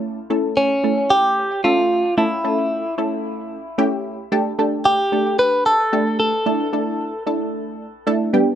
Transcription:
<<
  \new Staff \with { instrumentName = "Clean electric guitar" } { \time 4/4 \key a \minor \tempo 4 = 112 r4 cis'4 g'4 f'4 | e'4. r2 r8 | r4 g'4 b'8 a'4 a'8~ | a'4. r2 r8 | }
  \new Staff \with { instrumentName = "Synth stab" } { \time 4/4 \key a \minor <a cis' e' a'>8 <a cis' e' a'>8. r16 <a cis' e' a'>4 r8 <a cis' a' e''>8. r16 | <a cis' e' a'>8 <a cis' e' a'>8. r16 <a cis' e' a'>4 r8 <a cis' e' g'>8. r16 | <a d' g' a'>8 <a d' g' a'>8. r16 <a d' g' a'>4 r8 <a d' g' a'>8. r16 | <a d' e' a'>8 <a d' e' a'>8. r16 <a d' e' a'>4 r8 <a d' e' a'>8 <g b d' g'>8 | }
>>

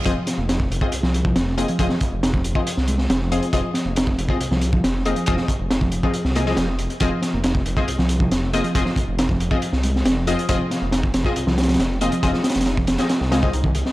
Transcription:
<<
  \new Staff \with { instrumentName = "Synth stab" } { \time 4/4 \key f \minor \tempo 4 = 138 <c' f' aes' ees''>16 r4. <c' f' aes' ees''>16 r4. <c' f' aes' ees''>16 r16 | <c' f' aes' ees''>16 r4. <c' f' aes' ees''>16 r4. <c' f' aes' ees''>16 r16 | <c' f' aes' ees''>16 r4. <c' f' aes' ees''>16 r4. <c' f' aes' ees''>16 r16 | <c' f' aes' ees''>16 r4. <c' f' aes' ees''>16 r8 <c' f' aes' ees''>16 <c' f' aes' ees''>16 r4 |
<c' f' aes' ees''>16 r4. <c' f' aes' ees''>16 r4. <c' f' aes' ees''>16 r16 | <c' f' aes' ees''>16 r4. <c' f' aes' ees''>16 r4. <c' f' aes' ees''>16 r16 | <c' f' aes' ees''>16 r4. <c' f' aes' ees''>16 r4. <c' f' aes' ees''>16 r16 | <c' f' aes' ees''>16 r4. <c' f' aes' ees''>16 r8 <c' f' aes' ees''>16 <c' f' aes' ees''>16 r4 | }
  \new Staff \with { instrumentName = "Picked electric bass" } { \clef bass \time 4/4 \key f \minor f8. bes16 ees'16 r4 f8 f16 r8 bes16 f16~ | f16 f16 r8 ees'16 f4 r16 aes8 c'16 f8. | f8. bes16 ees'16 r4 f8 f16 r8 bes16 f16~ | f16 f16 r8 ees'16 f4 r16 bes16 f16 f16 c'16 r8 |
f8. bes16 ees'16 r4 f8 f16 r8 bes16 f16~ | f16 f16 r8 ees'16 f4 r16 aes8 c'16 f8. | f8. bes16 ees'16 r4 f8 f16 r8 bes16 f16~ | f16 f16 r8 ees'16 f4 r16 aes16 r16 ees'16 ees16 r8 | }
  \new Staff \with { instrumentName = "Detuned saw bass" } { \clef bass \time 4/4 \key f \minor f,,16 r8 f,,8. f,,16 r16 c,16 c,8. f,,8. r16 | f,,16 r8 f,,8. f,,16 r8 c,8. f,,8. r16 | f,,16 r8 f,,8. f,,16 r16 c,16 c,8. f,,8. r16 | f,,16 r8 f,,8. f,,16 r8 c,8. f,,8. r16 |
f,,16 r8 f,,8. f,,16 r16 c,16 c,8. f,,8. r16 | f,,16 r8 f,,8. f,,16 r8 c,8. f,,8. r16 | f,,16 r8 f,,8. f,,16 r16 c,16 c,8. f,,8. r16 | f,,16 r8 f,,8. f,,16 r8 c,8. c,8. r16 | }
  \new DrumStaff \with { instrumentName = "Drums" } \drummode { \time 4/4 <hh bd>8 <hh sn>8 <hh sn>16 bd16 hh16 bd16 hh16 sn16 hh16 bd16 <hh sn>8 hh16 hh16 | <hh bd>16 sn16 <hh bd>8 <hh sn>16 bd16 hh16 bd16 hh16 sn16 hh16 sn16 <hh sn>8 hh16 hh16 | <hh bd>8 <hh sn>8 <hh sn>16 bd16 hh16 bd16 hh16 sn16 hh16 bd16 <hh sn>8 hh16 hh16 | <hh bd>16 sn16 <hh bd>8 <hh sn>16 bd16 hh16 bd16 hh16 sn16 hh16 sn16 <hh sn>8 hh16 hh16 |
<hh bd>8 <hh sn>8 <hh sn>16 bd16 hh16 bd16 hh16 sn16 hh16 bd16 <hh sn>8 hh16 hh16 | <hh bd>16 sn16 <hh bd>8 <hh sn>16 bd16 hh16 bd16 hh16 sn16 hh16 sn16 <hh sn>8 hh16 hh16 | <hh bd>8 <hh sn>8 <hh sn>16 bd16 <hh sn>16 bd16 hh16 sn16 <hh sn>32 <hh sn>32 <hh sn>32 <hh sn>32 <hh sn>8 hh16 hh16 | <hh bd>16 sn16 <hh sn>32 <hh sn>32 <hh sn>32 <hh sn>32 <hh sn>16 bd16 <hh sn>16 <hh sn>16 <hh sn>16 sn16 <hh sn>16 bd16 hh16 bd16 hh16 sn16 | }
>>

